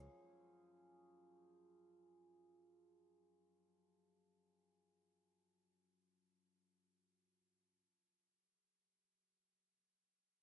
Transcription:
0, 0, Header, 1, 3, 480
1, 0, Start_track
1, 0, Key_signature, 6, "major"
1, 0, Tempo, 500000
1, 10008, End_track
2, 0, Start_track
2, 0, Title_t, "Analog synth pad"
2, 0, Program_c, 0, 89
2, 0, Note_on_c, 0, 56, 79
2, 0, Note_on_c, 0, 61, 80
2, 0, Note_on_c, 0, 70, 86
2, 0, Note_on_c, 0, 77, 77
2, 99, Note_off_c, 0, 77, 0
2, 100, Note_off_c, 0, 61, 0
2, 102, Note_off_c, 0, 70, 0
2, 104, Note_off_c, 0, 56, 0
2, 10008, End_track
3, 0, Start_track
3, 0, Title_t, "Hammered dulcimer"
3, 0, Program_c, 1, 15
3, 0, Note_on_c, 1, 42, 91
3, 0, Note_on_c, 1, 53, 70
3, 0, Note_on_c, 1, 58, 67
3, 0, Note_on_c, 1, 61, 65
3, 0, Note_on_c, 1, 68, 73
3, 4763, Note_off_c, 1, 68, 0
3, 5124, Note_off_c, 1, 58, 0
3, 5562, Note_off_c, 1, 61, 0
3, 7458, Note_off_c, 1, 42, 0
3, 7854, Note_off_c, 1, 53, 0
3, 10008, End_track
0, 0, End_of_file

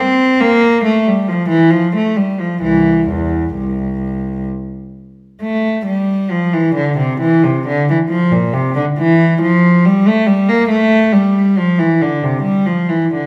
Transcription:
0, 0, Header, 1, 2, 480
1, 0, Start_track
1, 0, Key_signature, -1, "major"
1, 0, Tempo, 881057
1, 1421, Time_signature, 3, 2, 24, 8
1, 1421, Tempo, 931677
1, 2861, Tempo, 895522
1, 3821, Tempo, 884956
1, 4781, Tempo, 863309
1, 6701, Tempo, 917431
1, 7144, End_track
2, 0, Start_track
2, 0, Title_t, "Cello"
2, 0, Program_c, 0, 42
2, 0, Note_on_c, 0, 60, 72
2, 220, Note_off_c, 0, 60, 0
2, 221, Note_on_c, 0, 58, 72
2, 456, Note_off_c, 0, 58, 0
2, 458, Note_on_c, 0, 57, 64
2, 572, Note_off_c, 0, 57, 0
2, 584, Note_on_c, 0, 55, 57
2, 696, Note_off_c, 0, 55, 0
2, 697, Note_on_c, 0, 53, 60
2, 812, Note_off_c, 0, 53, 0
2, 812, Note_on_c, 0, 52, 62
2, 928, Note_off_c, 0, 52, 0
2, 929, Note_on_c, 0, 53, 56
2, 1050, Note_off_c, 0, 53, 0
2, 1067, Note_on_c, 0, 57, 51
2, 1178, Note_off_c, 0, 57, 0
2, 1181, Note_on_c, 0, 55, 43
2, 1300, Note_off_c, 0, 55, 0
2, 1305, Note_on_c, 0, 53, 46
2, 1424, Note_on_c, 0, 52, 47
2, 1425, Note_off_c, 0, 53, 0
2, 1429, Note_on_c, 0, 36, 38
2, 1648, Note_off_c, 0, 36, 0
2, 1657, Note_off_c, 0, 52, 0
2, 1667, Note_on_c, 0, 40, 45
2, 1899, Note_off_c, 0, 40, 0
2, 1905, Note_on_c, 0, 36, 40
2, 2376, Note_off_c, 0, 36, 0
2, 2867, Note_on_c, 0, 57, 53
2, 3085, Note_off_c, 0, 57, 0
2, 3104, Note_on_c, 0, 55, 53
2, 3341, Note_off_c, 0, 55, 0
2, 3346, Note_on_c, 0, 53, 57
2, 3462, Note_off_c, 0, 53, 0
2, 3465, Note_on_c, 0, 52, 53
2, 3583, Note_off_c, 0, 52, 0
2, 3584, Note_on_c, 0, 50, 56
2, 3700, Note_off_c, 0, 50, 0
2, 3704, Note_on_c, 0, 48, 55
2, 3821, Note_off_c, 0, 48, 0
2, 3826, Note_on_c, 0, 52, 64
2, 3944, Note_off_c, 0, 52, 0
2, 3954, Note_on_c, 0, 48, 52
2, 4070, Note_off_c, 0, 48, 0
2, 4079, Note_on_c, 0, 50, 56
2, 4189, Note_off_c, 0, 50, 0
2, 4204, Note_on_c, 0, 52, 51
2, 4247, Note_off_c, 0, 52, 0
2, 4307, Note_on_c, 0, 53, 64
2, 4421, Note_off_c, 0, 53, 0
2, 4430, Note_on_c, 0, 46, 58
2, 4545, Note_off_c, 0, 46, 0
2, 4546, Note_on_c, 0, 48, 55
2, 4664, Note_off_c, 0, 48, 0
2, 4669, Note_on_c, 0, 50, 64
2, 4712, Note_off_c, 0, 50, 0
2, 4789, Note_on_c, 0, 52, 69
2, 5024, Note_off_c, 0, 52, 0
2, 5031, Note_on_c, 0, 53, 75
2, 5261, Note_off_c, 0, 53, 0
2, 5273, Note_on_c, 0, 55, 71
2, 5386, Note_off_c, 0, 55, 0
2, 5396, Note_on_c, 0, 57, 67
2, 5504, Note_on_c, 0, 55, 63
2, 5506, Note_off_c, 0, 57, 0
2, 5620, Note_off_c, 0, 55, 0
2, 5628, Note_on_c, 0, 58, 64
2, 5742, Note_off_c, 0, 58, 0
2, 5742, Note_on_c, 0, 57, 72
2, 5975, Note_off_c, 0, 57, 0
2, 5984, Note_on_c, 0, 55, 63
2, 6221, Note_off_c, 0, 55, 0
2, 6236, Note_on_c, 0, 53, 63
2, 6347, Note_off_c, 0, 53, 0
2, 6349, Note_on_c, 0, 52, 58
2, 6464, Note_off_c, 0, 52, 0
2, 6476, Note_on_c, 0, 50, 57
2, 6589, Note_off_c, 0, 50, 0
2, 6596, Note_on_c, 0, 48, 52
2, 6706, Note_on_c, 0, 55, 55
2, 6710, Note_off_c, 0, 48, 0
2, 6819, Note_off_c, 0, 55, 0
2, 6828, Note_on_c, 0, 53, 49
2, 6943, Note_off_c, 0, 53, 0
2, 6949, Note_on_c, 0, 52, 44
2, 7065, Note_off_c, 0, 52, 0
2, 7079, Note_on_c, 0, 50, 40
2, 7144, Note_off_c, 0, 50, 0
2, 7144, End_track
0, 0, End_of_file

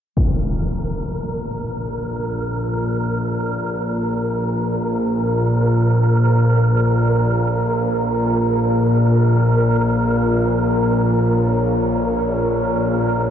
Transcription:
0, 0, Header, 1, 5, 480
1, 0, Start_track
1, 0, Key_signature, -5, "minor"
1, 0, Tempo, 500000
1, 12770, End_track
2, 0, Start_track
2, 0, Title_t, "Synth texture"
2, 0, Program_c, 0, 99
2, 172, Note_on_c, 0, 70, 79
2, 12770, Note_off_c, 0, 70, 0
2, 12770, End_track
3, 0, Start_track
3, 0, Title_t, "Ambient pad"
3, 0, Program_c, 1, 92
3, 175, Note_on_c, 1, 58, 72
3, 1921, Note_on_c, 1, 65, 71
3, 2310, Note_on_c, 1, 72, 74
3, 10268, Note_on_c, 1, 73, 71
3, 10560, Note_off_c, 1, 72, 0
3, 12770, Note_off_c, 1, 58, 0
3, 12770, Note_off_c, 1, 65, 0
3, 12770, Note_off_c, 1, 73, 0
3, 12770, End_track
4, 0, Start_track
4, 0, Title_t, "Synth drone"
4, 0, Program_c, 2, 95
4, 158, Note_on_c, 2, 34, 67
4, 161, Note_on_c, 2, 46, 61
4, 12770, Note_off_c, 2, 34, 0
4, 12770, Note_off_c, 2, 46, 0
4, 12770, End_track
5, 0, Start_track
5, 0, Title_t, "Impact"
5, 0, Program_c, 3, 103
5, 164, Note_on_c, 3, 60, 76
5, 361, Note_off_c, 3, 60, 0
5, 12770, End_track
0, 0, End_of_file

